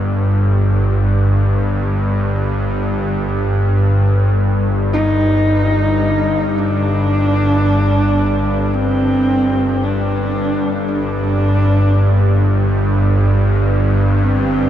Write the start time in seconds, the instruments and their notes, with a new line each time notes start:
Already playing: synth drone G1 G2
4.37 synth drone G1 G2, singing bowl A4
4.93 horsehead fiddle D#4
6.58 horsehead fiddle D4
8.74 horsehead fiddle C4
9.83 horsehead fiddle D4
10.92 horsehead fiddle D4
14.20 horsehead fiddle C4